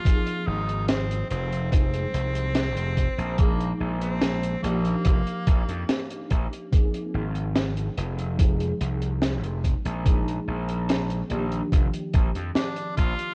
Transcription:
<<
  \new Staff \with { instrumentName = "FM electric piano" } { \time 4/4 \key f \dorian \tempo 4 = 72 <f bes c' ees' aes'>2 <f aes c' ees' aes'>2 | <f aes bes ees' aes'>4. <f bes d' ees' g'>2~ <f bes d' ees' g'>8 | <f bes c' ees' aes'>2 <f aes c' ees' aes'>2 | <f aes bes ees' aes'>4. <ees f bes d' g'>2~ <ees f bes d' g'>8 | }
  \new Staff \with { instrumentName = "Tenor saxophone" } { \time 4/4 \key f \dorian f'8 ees'8 c'8 c'8 c'2 | bes8 r16 c'8. bes2 r8 | r1 | r2. d'8 f'8 | }
  \new Staff \with { instrumentName = "Slap bass" } { \clef bass \time 4/4 \key f \dorian r8 aes,,4 f,,4 c,8. f,,16 r16 bes,,16~ | bes,,8 bes,,4 bes,,16 r16 f,,16 r16 bes,,16 f,16 r8 bes,,16 r16 | r8 aes,,4 f,,4 c,8. f,,16 r16 bes,,16~ | bes,,8 bes,,4 bes,,16 r16 f,,16 r16 bes,,16 f,16 r8 bes,,16 r16 | }
  \new DrumStaff \with { instrumentName = "Drums" } \drummode { \time 4/4 <hh bd>16 hh8 hh16 <hh sn>16 hh16 hh16 hh16 <hh bd>16 hh16 hh16 hh16 <hh sn>16 hh16 <hh bd>16 hh16 | <hh bd>16 hh8 hh16 <hh sn>16 hh16 hh16 hh16 <hh bd>16 hh16 <hh bd>16 hh16 <hh sn>16 hh16 <hh bd>16 hh16 | <hh bd>16 hh8 hh16 <hh sn>16 hh16 hh16 hh16 <hh bd>16 hh16 hh16 hh16 <hh sn>16 hh16 <hh bd>16 hh16 | <hh bd>16 hh8 hh16 <hh sn>16 hh16 hh16 hh16 <hh bd>16 hh16 <hh bd>16 hh16 <hh sn>16 hh16 <hh bd>16 hh16 | }
>>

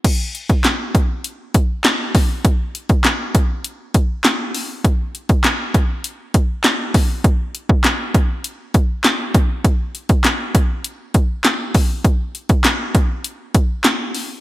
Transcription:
\new DrumStaff \with { instrumentName = "Drums" } \drummode { \time 4/4 \tempo 4 = 100 <cymc hh bd>8 hh16 <hh bd>16 <hc hh sn>8 <hh bd>8 hh8 <hh bd>8 <hc hh sn>8 <hho bd>8 | <hh bd>8 hh16 <hh bd>16 <hc hh sn>8 <hh bd>8 hh8 <hh bd>8 <hc hh sn>8 hho8 | <hh bd>8 hh16 <hh bd>16 <hc hh sn>8 <hh bd>8 hh8 <hh bd>8 <hc hh sn>8 <hho bd>8 | <hh bd>8 hh16 bd16 <hc hh sn>8 <hh bd>8 hh8 <hh bd>8 <hc hh sn>8 <hh bd>8 |
<hh bd>8 hh16 <hh bd>16 <hc hh sn>8 <hh bd>8 hh8 <hh bd>8 <hc hh sn>8 <hho bd>8 | <hh bd>8 hh16 <hh bd>16 <hc hh sn>8 <hh bd>8 hh8 <hh bd>8 <hc hh sn>8 hho8 | }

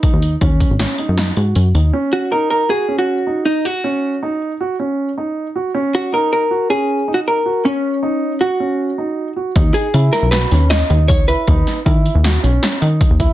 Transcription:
<<
  \new Staff \with { instrumentName = "Hollow-body jazz guitar" } { \time 5/4 \key ees \phrygian \tempo 4 = 157 b'1 r4 | r8 ges'8 bes'8 bes'8 aes'8. ges'4~ ges'16 ees'8 ges'8~ | ges'4. r2. r8 | r8 ges'8 bes'8 bes'4 aes'8~ \tuplet 3/2 { aes'4 ges'8 } bes'4 |
des'2 ges'2~ ges'8 r8 | r8 aes'4 bes'8 b'4 ees''4 des''8 b'8~ | b'4 r1 | }
  \new Staff \with { instrumentName = "Grand piano" } { \time 5/4 \key ees \phrygian dis'4 des'4 des'8 dis'4 fis'4 dis'8 | des'4 ees'4 ges'8 des'4 ees'4 ges'8 | des'4 ees'4 ges'8 des'4 ees'4 ges'8 | des'4 ees'4 ges'8 des'4 ees'4 ges'8 |
des'4 ees'4 ges'8 des'4 ees'4 ges'8 | ees'4 e'4 fis'8 des'4 ees'4 e'8 | ees'4 e'4 fis'8 des'4 ees'4 e'8 | }
  \new Staff \with { instrumentName = "Analog synth bass" } { \clef bass \time 5/4 \key ees \phrygian r16 dis,8. dis,8. aes,,8 r8 fis,8. aes,8 fis,8 dis,8 | r1 r4 | r1 r4 | r1 r4 |
r1 r4 | ees,8 r8 des8 r16 b,,8. ees,4 ees,8. des,8 r16 | ees,8 r8 ees8. ees,8. b,,8 r8 ees8. ees,8 r16 | }
  \new DrumStaff \with { instrumentName = "Drums" } \drummode { \time 5/4 <hh bd>8 hh8 <hh bd>8 <hh bd>8 <hh sn>8 hh8 <hh sn>8 hh8 hh8 hh8 | r4 r4 r4 r4 r4 | r4 r4 r4 r4 r4 | r4 r4 r4 r4 r4 |
r4 r4 r4 r4 r4 | <hh bd>8 hh8 hh8 <hh sn>8 <hh sn>8 <hh sn>8 <hh sn>8 hh8 <hh bd>8 hh8 | <hh bd>8 <hh sn>8 <hh bd>8 hh8 <hh sn>8 hh8 <hh sn>8 hh8 <hh bd>8 <hh bd>8 | }
>>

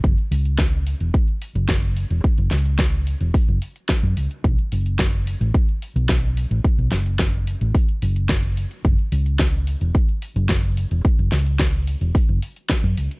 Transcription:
<<
  \new Staff \with { instrumentName = "Fingered electric bass" } { \clef bass \time 4/4 \key fis \minor \tempo 4 = 109 fis,,16 r16 cis,4 r16 e,,16 r8. fis,,8. r16 e,,16 | r16 fis,,16 cis,4 r16 e,,16 r16 fis,,16 r8. fis,16 cis,16 r16 | b,,16 r16 fis,,4 r16 a,,16 r8. b,,8. r16 a,,16 | r16 b,,16 fis,,4 r16 a,,16 r8 fis,,4 r8 |
fis,,16 r16 cis,4 r16 e,,16 r8. fis,,8. r16 e,,16 | r16 fis,,16 cis,4 r16 e,,16 r16 fis,,16 r8. fis,16 cis,16 r16 | }
  \new DrumStaff \with { instrumentName = "Drums" } \drummode { \time 4/4 <hh bd>16 hh16 hho16 hh16 <hh bd sn>16 hh16 hho16 hh16 <hh bd>16 hh16 hho16 hh16 <hh bd sn>16 hh16 hho16 hh16 | <hh bd>16 hh16 <hho sn>16 hh16 <hh bd sn>16 hh16 hho16 hh16 <hho bd>16 hh16 hho16 hh16 <hh bd sn>16 hh16 hho16 hh16 | <hh bd>16 hh16 hho16 hh16 <hh bd sn>16 hh16 hho16 hh16 <hh bd>16 hh16 hho16 hh16 <hh bd sn>16 hh16 hho16 hh16 | <hh bd>16 hh16 <hho sn>16 hh16 <hh bd sn>16 hh16 hho16 hh16 <hho bd>16 hh16 hho16 hh16 <hh bd sn>16 hh16 hho16 hh16 |
<hh bd>16 hh16 hho16 hh16 <hh bd sn>16 hh16 hho16 hh16 <hh bd>16 hh16 hho16 hh16 <hh bd sn>16 hh16 hho16 hh16 | <hh bd>16 hh16 <hho sn>16 hh16 <hh bd sn>16 hh16 hho16 hh16 <hho bd>16 hh16 hho16 hh16 <hh bd sn>16 hh16 hho16 hh16 | }
>>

